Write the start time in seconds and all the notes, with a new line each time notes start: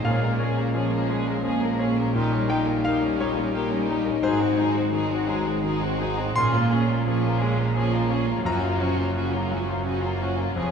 Already playing: G#3
0.02 A#1 A#2 A#3 C#4 F5
0.07 G#4
0.21 G#3 A#3 A#4
0.38 A#3 C#4
0.43 G#4
0.55 G#3 A#3
0.60 A#4
0.75 F3 A#3 C#4 G#4
0.92 G#3 A#3 A#4
1.10 G#3 A#3 C#4 G#4
1.28 G#3 A#3 A#4
1.44 F3 A#3 C#4 G#4
1.63 G#3 A#3 A#4
1.79 A#3 C#4 G#4
1.96 G#3 A#3 A#4
2.14 A#2 G3 A#3 D#4 G4
2.33 G3 C#4 A#4
2.50 A#3 D#4 G4 G5
2.67 G3 C#4 A#4
2.85 A#3 D#4 G4 F5
3.02 G3 C#4 A#4
3.20 G3 A#3 D#4 G4 C#5
3.36 G3 C#4 A#4
3.53 A#3 D#4 G4
3.71 G3 C#4 A#4
3.88 A#3 D#4 G4
4.05 G3 C#4 A#4
4.23 G#1 G#2 F#3 D#4 G#4 C5
4.39 G#3 C4 F#4
4.58 F#3 D#4 G#4
4.74 G#3 C4 F#4
4.92 D#3 F#3 D#4 G#4
5.10 G#3 C4 F#4
5.28 F#3 G#3 D#4 G#4
5.45 G#3 C4 F#4
5.63 D#3 F#3 D#4 G#4
5.81 G#3 C4 F#4
5.99 F#3 D#4 G#4
6.18 G#3 C4 F#4
6.36 A#1 A#2 A#3 C#4 F4 G#4 C6
6.54 G#3 A#3 F4
6.71 A#3 C#4 G#4
6.88 G#3 A#3 F4
7.05 F3 A#3 C#4 G#4
7.22 G#3 A#3 F4
7.40 G#3 A#3 C#4 G#4
7.57 G#3 A#3 F4
7.75 F3 A#3 C#4 G#4
7.92 G#3 A#3 F4
8.10 A#3 C#4 G#4
8.27 G#3 A#3 F4
8.45 F#1 F#2 F3 C#4 F#4 A#5
8.63 F#3 A#3 F4
8.80 F3 C#4 F#4
8.97 F#3 A#3 F4
9.15 C#3 F3 C#4 F#4
9.33 F#3 A#3 F4
9.51 F3 F#3 C#4 F#4
9.68 F#3 A#3 F4
9.86 C#3 F3 C#4 F#4
10.02 F#3 A#3 F4
10.21 F3 C#4 F#4
10.38 F#3 A#3 F4
10.55 F1 F2 F3 C#4 G#4 C#5